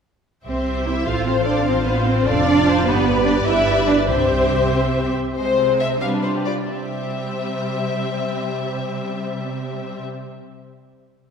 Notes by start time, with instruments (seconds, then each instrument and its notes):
0.45 double bass section C2, cello section C4, viola section G4 C5, violin section C5 E5
0.86 cello section E4, violin section E5
1.06 double bass section A1, cello section F4, viola section A4 C5, violin section F5
1.26 cello section C4, violin section C5
1.45 cello section D4, violin section D5
1.66 double bass section A1, cello section C4, viola section F4 C5, violin section C5
1.86 cello section B3, violin section B4
2.06 cello section C4, violin section C5
2.25 double bass section F1, cello section D4, viola section A4, violin section D5 F5
2.46 viola section D5
2.66 viola section C5
2.86 double bass section G1, cello section B3, viola section G4 B4, violin section B4 D5
3.25 cello section D4, violin section D5
3.46 double bass section G1, cello section E4, viola section B4, violin section D5 E5
3.87 cello section D4, violin section D5
4.08 double bass section C2, cello section C4, viola section G4 C5, violin section C5 E5
5.36 cello section C3, viola section G#3 C4, violin section G#3 C5
5.47 violin section C4
5.58 violin section F4
5.69 violin section C4
5.80 violin section G#3 E5
5.92 violin section C4
6.01 viola section G3 D4, violin section B3 B4 F5
6.13 violin section D4
6.23 violin section F4 C5
6.35 violin section G4
6.46 violin section F4 D5
6.57 violin section D4
6.67 cello section C3, viola section G3 C4, violin section G4 C5 E5